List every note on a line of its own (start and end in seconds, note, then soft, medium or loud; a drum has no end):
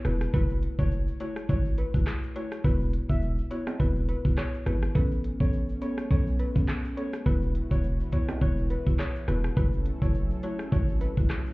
0.05 0.27 E1 medium
0.05 0.24 B3 medium
0.05 0.24 E4 medium
0.05 0.24 F#4 medium
0.05 0.15 B4 medium
0.05 cross-stick medium
0.05 closed hi-hat medium
0.05 shaker medium
0.21 cross-stick medium
0.21 shaker medium
0.34 0.68 F#1 loud
0.34 0.75 A3 loud
0.34 0.75 E4 medium
0.34 0.75 F#4 loud
0.34 0.52 B4 loud
0.34 kick loud
0.34 shaker medium
0.50 shaker medium
0.50 shaker soft
0.63 closed hi-hat medium
0.63 shaker medium
0.79 1.10 F#1 loud
0.79 1.17 A3 medium
0.79 1.17 E4 medium
0.79 1.18 F#4 medium
0.79 0.87 C#5 medium
0.79 kick medium
0.79 shaker medium
0.91 shaker medium
1.07 shaker medium
1.20 1.47 A3 medium
1.20 1.47 E4 medium
1.20 1.47 F#4 medium
1.20 1.31 C#5 medium
1.20 closed hi-hat medium
1.20 shaker medium
1.36 cross-stick medium
1.36 shaker medium
1.49 1.83 G#1 loud
1.49 1.90 A3 medium
1.49 1.90 E4 medium
1.49 1.91 F#4 loud
1.49 1.59 C#5 medium
1.49 kick medium
1.49 shaker medium
1.65 shaker medium
1.78 1.88 B4 medium
1.78 closed hi-hat medium
1.78 shaker medium
1.94 2.04 F#1 medium
1.94 2.10 A3 medium
1.94 2.10 E4 medium
1.94 2.10 F#4 medium
1.94 kick medium
1.94 shaker medium
2.07 cross-stick loud
2.07 clap loud
2.07 shaker medium
2.23 shaker medium
2.36 2.54 A3 medium
2.36 2.54 E4 medium
2.36 2.55 F#4 medium
2.36 2.46 C#5 medium
2.36 closed hi-hat medium
2.36 shaker medium
2.52 cross-stick medium
2.52 shaker medium
2.64 2.98 E1 loud
2.64 3.06 B3 loud
2.64 3.06 E4 medium
2.64 3.06 F#4 loud
2.64 2.83 B4 loud
2.64 kick loud
2.64 shaker medium
2.81 shaker soft
2.81 shaker medium
2.93 closed hi-hat medium
2.93 shaker medium
3.09 3.41 E1 loud
3.09 3.48 B3 medium
3.09 3.48 E4 medium
3.09 3.48 F#4 medium
3.09 3.18 E5 medium
3.09 kick medium
3.09 shaker medium
3.22 shaker medium
3.38 shaker medium
3.51 3.78 B3 medium
3.51 3.78 E4 medium
3.51 3.78 F#4 medium
3.51 3.61 C#5 medium
3.51 closed hi-hat medium
3.51 shaker medium
3.67 cross-stick medium
3.67 high timbale medium
3.67 shaker medium
3.80 4.14 E1 loud
3.80 4.21 B3 medium
3.80 4.21 E4 medium
3.80 4.21 F#4 loud
3.80 3.90 B4 medium
3.80 kick loud
3.80 shaker medium
3.96 shaker medium
4.09 4.19 B4 medium
4.09 closed hi-hat medium
4.09 shaker medium
4.25 4.35 E1 medium
4.25 4.41 B3 medium
4.25 4.41 E4 medium
4.25 4.41 F#4 medium
4.25 kick medium
4.25 shaker medium
4.38 4.48 C#5 medium
4.38 cross-stick loud
4.38 clap loud
4.38 shaker medium
4.54 shaker medium
4.66 4.88 G#1 medium
4.66 4.85 B3 medium
4.66 4.85 E4 medium
4.66 4.85 F#4 medium
4.66 4.77 B4 medium
4.66 cross-stick medium
4.66 closed hi-hat medium
4.66 shaker medium
4.82 cross-stick medium
4.82 shaker medium
4.95 5.29 A1 loud
4.95 7.24 A3 medium
4.95 5.36 B3 loud
4.95 7.24 B3 medium
4.95 7.24 C#4 medium
4.95 5.36 C#4 medium
4.95 5.37 A4 loud
4.95 5.13 B4 loud
4.95 kick loud
4.95 shaker medium
5.11 shaker soft
5.11 shaker medium
5.24 closed hi-hat medium
5.24 shaker medium
5.40 5.72 A1 loud
5.40 5.79 B3 medium
5.40 5.79 C#4 medium
5.40 5.79 A4 medium
5.40 5.48 C#5 medium
5.40 kick medium
5.40 shaker medium
5.53 shaker medium
5.69 shaker soft
5.69 shaker medium
5.82 6.09 B3 medium
5.82 6.09 C#4 medium
5.82 6.09 A4 medium
5.82 5.92 C#5 medium
5.82 closed hi-hat medium
5.82 shaker medium
5.98 cross-stick medium
5.98 shaker medium
6.11 6.45 B1 medium
6.11 6.52 B3 loud
6.11 6.52 C#4 medium
6.11 6.52 A4 loud
6.11 6.21 C#5 medium
6.11 kick loud
6.11 shaker medium
6.27 shaker soft
6.27 shaker medium
6.39 6.50 B4 medium
6.39 closed hi-hat medium
6.39 shaker medium
6.55 6.65 A1 loud
6.55 6.71 B3 medium
6.55 6.72 C#4 medium
6.55 6.72 A4 medium
6.55 kick medium
6.55 shaker medium
6.68 cross-stick loud
6.68 clap loud
6.68 shaker medium
6.84 shaker medium
6.97 7.16 B3 medium
6.97 7.16 C#4 medium
6.97 7.16 A4 medium
6.97 7.07 C#5 medium
6.97 closed hi-hat medium
6.97 shaker medium
7.13 cross-stick medium
7.13 shaker medium
7.26 7.60 E1 loud
7.26 9.55 E3 medium
7.26 7.67 B3 medium
7.26 11.53 E4 medium
7.26 7.67 E4 medium
7.26 9.55 F#4 medium
7.26 7.67 F#4 loud
7.26 7.44 B4 medium
7.26 9.55 B4 medium
7.26 kick loud
7.26 shaker medium
7.42 shaker soft
7.42 shaker medium
7.55 closed hi-hat medium
7.55 shaker medium
7.71 8.02 E1 loud
7.71 8.09 B3 medium
7.71 8.10 E4 medium
7.71 8.10 F#4 medium
7.71 7.79 C#5 medium
7.71 kick medium
7.71 shaker medium
7.83 shaker medium
8.00 shaker medium
8.12 8.39 B3 medium
8.12 8.39 E4 medium
8.12 8.40 F#4 medium
8.12 8.23 C#5 medium
8.12 kick medium
8.12 closed hi-hat medium
8.12 shaker medium
8.29 cross-stick medium
8.29 high timbale medium
8.29 shaker medium
8.41 8.75 E1 loud
8.41 8.83 B3 loud
8.41 8.83 E4 medium
8.41 8.83 F#4 loud
8.41 8.52 C#5 medium
8.41 kick loud
8.41 shaker medium
8.57 shaker medium
8.70 8.81 B4 medium
8.70 closed hi-hat medium
8.70 shaker medium
8.86 8.96 E1 medium
8.86 9.02 B3 medium
8.86 9.02 E4 medium
8.86 9.03 F#4 medium
8.86 kick loud
8.86 shaker medium
8.99 9.10 C#5 medium
8.99 cross-stick loud
8.99 clap loud
8.99 shaker medium
9.15 shaker medium
9.28 9.50 E1 medium
9.28 9.47 B3 medium
9.28 9.47 E4 medium
9.28 9.47 F#4 medium
9.28 9.38 B4 medium
9.28 cross-stick medium
9.28 closed hi-hat medium
9.28 shaker medium
9.44 cross-stick medium
9.44 shaker medium
9.57 9.91 F#1 loud
9.57 11.53 F#3 medium
9.57 9.98 A3 loud
9.57 11.53 C#4 medium
9.57 9.98 E4 medium
9.57 9.98 F#4 loud
9.57 11.53 A4 medium
9.57 9.75 B4 loud
9.57 kick loud
9.57 shaker medium
9.73 shaker soft
9.73 shaker medium
9.86 closed hi-hat medium
9.86 shaker medium
10.02 10.33 F#1 loud
10.02 10.40 A3 medium
10.02 10.40 E4 medium
10.02 10.41 F#4 medium
10.02 10.10 C#5 medium
10.02 kick medium
10.02 shaker medium
10.14 shaker medium
10.30 shaker medium
10.43 10.70 A3 medium
10.43 10.70 E4 medium
10.43 10.70 F#4 medium
10.43 10.54 C#5 medium
10.43 closed hi-hat medium
10.43 shaker medium
10.59 cross-stick medium
10.59 shaker medium
10.72 11.06 G#1 loud
10.72 11.13 A3 medium
10.72 11.13 E4 medium
10.72 11.14 F#4 loud
10.72 10.82 C#5 medium
10.72 kick loud
10.72 shaker medium
10.88 shaker medium
11.01 11.11 B4 medium
11.01 closed hi-hat medium
11.01 shaker medium
11.17 11.27 F#1 medium
11.17 11.33 A3 medium
11.17 11.33 E4 medium
11.17 11.33 F#4 medium
11.17 kick medium
11.17 shaker medium
11.30 cross-stick loud
11.30 clap loud
11.30 shaker medium
11.46 shaker medium